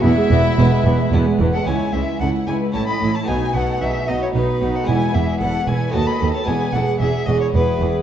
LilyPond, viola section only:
\new Staff \with { instrumentName = "Viola section" } { \time 3/4 \key e \major \tempo 4 = 112 b16 gis16 b16 gis16 b16 gis16 b16 gis16 b16 gis16 b16 gis16 | e'8 e'8 e'8 e'8 e'8 e'8 | dis'8 dis'8 dis'8 dis'8 dis'8 dis'8 | e'8 e'8 e'8 e'8 a'8 a'8 |
gis'8 gis'8 gis'8 gis'8 gis'8 gis'8 | }